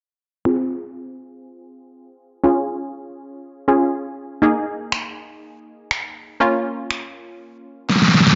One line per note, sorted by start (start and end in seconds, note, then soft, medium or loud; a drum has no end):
0.45 2.40 C4 medium
0.45 2.40 F4 medium
0.45 2.40 G#4 medium
2.44 3.65 C#4 medium
2.44 3.66 F4 medium
2.44 3.66 G#4 medium
3.68 4.42 C#4 medium
3.68 4.42 F4 medium
3.68 4.42 G#4 medium
4.42 6.36 A#3 medium
4.42 6.37 D#4 medium
4.42 6.37 G#4 medium
4.92 finger snap loud
5.91 finger snap loud
6.40 8.35 A#3 medium
6.40 8.35 C#4 medium
6.40 8.35 F4 medium
6.91 finger snap loud
7.89 snare medium
7.96 snare medium
8.02 snare medium
8.08 snare medium
8.14 snare medium
8.20 snare medium
8.27 snare medium